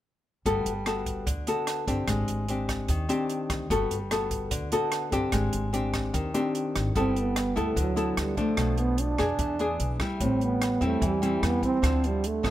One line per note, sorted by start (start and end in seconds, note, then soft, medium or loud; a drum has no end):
0.46 0.64 G1 medium
0.46 1.25 G3 soft
0.46 0.72 B3 soft
0.46 0.72 F#4 soft
0.46 0.72 A4 soft
0.46 kick soft
0.46 closed hi-hat soft
0.66 1.23 G1 medium
0.66 closed hi-hat soft
0.86 1.26 B3 soft
0.86 1.27 F#4 soft
0.86 1.27 A4 soft
0.86 cross-stick medium
0.86 closed hi-hat soft
1.06 kick soft
1.06 closed hi-hat soft
1.26 1.46 D2 medium
1.26 2.06 D3 soft
1.26 kick soft
1.26 closed hi-hat medium
1.47 1.84 B3 soft
1.47 1.85 F#4 soft
1.47 1.85 A4 soft
1.47 closed hi-hat soft
1.67 cross-stick soft
1.67 closed hi-hat soft
1.87 2.07 G1 medium
1.87 2.45 C4 medium
1.87 2.45 D4 soft
1.87 2.46 G4 medium
1.87 kick soft
1.87 closed hi-hat soft
2.07 2.27 G#1 medium
2.07 2.87 G#3 soft
2.07 kick medium
2.07 cross-stick soft
2.07 closed hi-hat soft
2.28 2.86 G#1 medium
2.28 closed hi-hat soft
2.48 3.06 C4 soft
2.48 3.07 D4 soft
2.48 3.07 G4 soft
2.48 closed hi-hat soft
2.69 kick soft
2.69 cross-stick soft
2.69 closed hi-hat soft
2.88 3.08 D#2 medium
2.88 3.68 D#3 soft
2.88 kick soft
2.88 closed hi-hat soft
3.09 3.67 C4 soft
3.09 3.67 D4 medium
3.09 3.67 G4 medium
3.09 closed hi-hat soft
3.30 closed hi-hat soft
3.50 3.69 D2 medium
3.50 kick soft
3.50 cross-stick soft
3.50 closed hi-hat soft
3.70 3.89 G1 medium
3.70 4.50 G3 soft
3.70 3.96 B3 soft
3.70 3.97 F#4 soft
3.70 3.97 A4 soft
3.70 kick soft
3.70 closed hi-hat soft
3.91 4.48 G1 medium
3.91 closed hi-hat soft
4.11 4.69 B3 soft
4.11 4.69 F#4 soft
4.11 4.69 A4 medium
4.11 cross-stick medium
4.11 closed hi-hat soft
4.31 kick soft
4.31 closed hi-hat soft
4.51 4.71 D2 medium
4.51 5.31 D3 soft
4.51 kick soft
4.51 closed hi-hat medium
4.72 5.09 B3 soft
4.72 5.10 F#4 soft
4.72 5.10 A4 medium
4.72 closed hi-hat soft
4.92 cross-stick soft
4.92 closed hi-hat soft
5.12 5.31 G1 medium
5.12 5.70 C4 medium
5.12 5.70 D4 medium
5.12 5.70 G4 medium
5.12 kick soft
5.12 closed hi-hat soft
5.32 5.51 G#1 medium
5.32 6.12 G#3 soft
5.32 kick soft
5.32 cross-stick soft
5.32 closed hi-hat soft
5.53 6.10 G#1 medium
5.53 closed hi-hat soft
5.73 6.31 C4 medium
5.73 6.31 D4 soft
5.73 6.31 G4 medium
5.73 closed hi-hat soft
5.94 kick soft
5.94 cross-stick soft
5.94 closed hi-hat soft
6.13 6.33 D#2 medium
6.13 6.93 D#3 soft
6.13 kick medium
6.13 closed hi-hat medium
6.34 6.92 C4 medium
6.34 6.92 D4 medium
6.34 6.92 G4 medium
6.34 closed hi-hat soft
6.55 closed hi-hat soft
6.76 6.94 G#1 medium
6.76 cross-stick soft
6.76 closed hi-hat soft
6.95 7.52 G1 medium
6.95 7.75 G3 soft
6.95 7.36 B3 soft
6.95 7.21 C4 medium
6.95 7.36 E4 soft
6.95 7.36 A4 medium
6.95 kick soft
6.95 closed hi-hat soft
7.16 7.60 B3 medium
7.16 closed hi-hat soft
7.36 cross-stick medium
7.36 closed hi-hat soft
7.56 7.76 D2 medium
7.56 7.78 A3 medium
7.56 7.93 B3 medium
7.56 7.94 E4 medium
7.56 7.94 A4 medium
7.56 closed hi-hat soft
7.76 8.14 D2 medium
7.76 8.56 D3 medium
7.76 8.21 F#3 medium
7.76 kick medium
7.76 closed hi-hat soft
7.96 8.34 B3 soft
7.96 8.34 E4 soft
7.96 8.34 A4 medium
7.96 closed hi-hat soft
8.17 8.36 D2 medium
8.17 8.41 G3 medium
8.17 cross-stick medium
8.17 closed hi-hat soft
8.37 9.15 F3 medium
8.37 9.16 A3 medium
8.37 8.82 A3 medium
8.37 9.16 D4 medium
8.37 kick soft
8.37 closed hi-hat soft
8.57 9.14 B1 medium
8.57 9.37 B2 medium
8.57 kick medium
8.57 cross-stick medium
8.57 closed hi-hat soft
8.78 9.03 B3 medium
8.78 closed hi-hat soft
8.98 10.01 D4 medium
8.98 closed hi-hat soft
9.18 9.38 F2 medium
9.18 9.56 B3 medium
9.18 9.56 D4 medium
9.18 9.56 G#4 medium
9.18 cross-stick soft
9.18 closed hi-hat soft
9.39 9.77 E2 medium
9.39 10.00 E3 soft
9.39 kick medium
9.39 closed hi-hat soft
9.59 9.97 B3 medium
9.59 9.97 D4 medium
9.59 9.97 G#4 medium
9.59 closed hi-hat soft
9.80 9.99 B1 medium
9.80 closed hi-hat soft
10.00 10.78 G3 medium
10.00 10.78 E4 medium
10.00 kick soft
10.00 cross-stick medium
10.00 closed hi-hat soft
10.20 10.77 A1 medium
10.20 11.00 A2 soft
10.20 10.46 C4 medium
10.20 kick medium
10.20 closed hi-hat soft
10.41 10.87 B3 medium
10.41 closed hi-hat soft
10.62 cross-stick medium
10.62 closed hi-hat soft
10.81 11.00 E2 medium
10.81 11.18 G3 medium
10.81 11.18 C4 medium
10.81 11.19 E4 medium
10.81 closed hi-hat soft
10.85 11.07 A3 medium
11.01 11.40 E2 medium
11.01 11.81 E3 medium
11.01 kick medium
11.01 closed hi-hat soft
11.06 11.48 G3 medium
11.22 11.80 G3 medium
11.22 11.80 C4 soft
11.22 11.80 E4 medium
11.22 closed hi-hat soft
11.43 11.61 E2 medium
11.43 11.64 B3 medium
11.43 cross-stick medium
11.43 closed hi-hat soft
11.63 12.08 C4 medium
11.63 kick soft
11.63 closed hi-hat soft
11.82 12.40 D2 medium
11.82 12.50 D3 medium
11.82 12.23 F3 soft
11.82 12.23 C4 soft
11.82 12.23 E4 medium
11.82 kick medium
11.82 cross-stick medium
11.82 closed hi-hat soft
12.04 12.28 G3 medium
12.04 closed hi-hat soft
12.24 12.50 A3 medium
12.24 closed hi-hat soft
12.43 12.50 A1 medium
12.43 12.50 F3 medium
12.43 12.50 B3 medium
12.43 12.50 E4 medium
12.43 kick soft
12.43 cross-stick soft
12.43 closed hi-hat soft